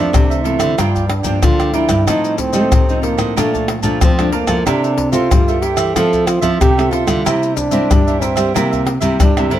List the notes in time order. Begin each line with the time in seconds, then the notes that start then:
Already playing: F2 E3 A3 C4 D4 A4 C5 E5
0.13 C3, pandeiro, tamborim, maracas, surdo
0.30 A4 C5 E5, pandeiro, maracas
0.44 E3 A3 C4 E4 F4 A4 C5 E5, pandeiro
0.59 D3 A4 C5 E5, pandeiro, tamborim, maracas
0.78 G2 F3 A#3 D4 F4 A#4 D5 G5, pandeiro, tamborim, maracas, surdo
0.95 A#4 D5 G5, pandeiro, maracas, surdo
1.08 D4, muted cavaquinho stroke, pandeiro, tamborim
1.23 G2 F3 A#3 D4 A#4 D5 G5, pandeiro, maracas, surdo
1.43 D3 F4, pandeiro, tamborim, maracas, surdo
1.59 A#4 D5 G5, pandeiro, tamborim, maracas
1.73 F3 A#3 D4 E4 F4 A#4 D5 G5, pandeiro
1.88 G2 A#4 D5 G5, pandeiro, tamborim, maracas, surdo
2.07 A2 F3 C4 D#4 F4 A4 C5 D#5, pandeiro, tamborim, maracas, surdo
2.24 A4 C5 D#5, pandeiro, maracas
2.38 C4, muted cavaquinho stroke, pandeiro, maracas, surdo
2.53 F3 A3 C4 D#4 A4 C5 D#5, pandeiro, maracas
2.72 A2 C3, pandeiro, tamborim, maracas, surdo
2.88 F3 C4 D#4 A4 C5 D#5, pandeiro, maracas
3.02 A#3 F4 A4 C5 D#5, pandeiro
3.17 A2 A4 C5 D#5, pandeiro, tamborim, maracas
3.36 A#2 F3 A3 D4 A#4 D5 F5 A5, pandeiro, tamborim, maracas, surdo
3.53 D5 F5 A5, pandeiro, maracas, surdo
3.68 muted cavaquinho stroke, pandeiro, tamborim
3.83 A#2 F3 A3 D4 D5 F5 A5, pandeiro, maracas, surdo
4.01 F2 F3 C4, pandeiro, tamborim, maracas, surdo
4.18 F3 A3 D4 D5 F5 A5, pandeiro, tamborim, maracas
4.32 A#3 A#4 D5 F5 A5, pandeiro
4.47 F3 A#3 E4 A4 D5 F5 A5, pandeiro, tamborim, maracas, surdo
4.66 C3 D4 E4 A#4 C5 E5, pandeiro, tamborim, maracas, surdo
4.83 A#4 C5 E5, pandeiro, maracas
4.97 muted cavaquinho stroke, pandeiro, surdo
5.12 A#3 C4 E4 F4 A4 A#4 C5 E5, pandeiro, maracas
5.31 G2 G3, pandeiro, tamborim, maracas, surdo
5.48 A#3 E4 A4 A#4 C5 E5, pandeiro, maracas
5.62 E4 G4 A#4 C5 E5, pandeiro
5.77 E3 A#4 C5 E5, pandeiro, tamborim, maracas
5.96 F3 C4 E4 F4 A4 C5 E5, pandeiro, tamborim, maracas, surdo
6.13 A4 C5 E5, pandeiro, maracas, surdo
6.27 F4, muted cavaquinho stroke, pandeiro, tamborim, maracas
6.41 F3 C4 E4 A4 C5 E5, pandeiro, maracas, surdo
6.61 C3 G4, pandeiro, tamborim, maracas, surdo
6.77 C4 E4 A4 C5 E5, pandeiro, tamborim, maracas
6.91 F4 A4 C5 E5, pandeiro
7.06 D3 G3 A#3 E4 A4 C5 E5, pandeiro, tamborim, maracas, surdo
7.25 C3 E4 A#4 C5 E5, pandeiro, tamborim, maracas, surdo
7.42 A#4 C5 E5, pandeiro, maracas
7.56 D4, muted cavaquinho stroke, pandeiro, maracas, surdo
7.71 G3 A#3 C4 E4 A#4 C5 E5, pandeiro, maracas
7.91 G2 G3, pandeiro, tamborim, maracas, surdo
8.07 G3 A#3 E4 A#4 C5 E5, pandeiro, maracas
8.20 C4 E4 A#4 C5 E5, pandeiro, maracas, surdo
8.36 G3 A#4 C5 E5, pandeiro, tamborim, maracas
8.54 C3 G3 A#3 E4 A#4 C5 E5, pandeiro, tamborim, maracas, surdo
8.71 A#4 C5 E5, pandeiro, maracas, surdo
8.85 muted cavaquinho stroke, pandeiro, tamborim
9.00 C3 G3 A#3 E4 A#4 C5 E5, pandeiro, maracas, surdo
9.20 G2 G3 D4, pandeiro, tamborim, maracas, surdo
9.37 C3 G3 A#3 E4 A#4 C5 E5, pandeiro, tamborim, maracas
9.50 D3 C4 E4 A#4 C5 E5, pandeiro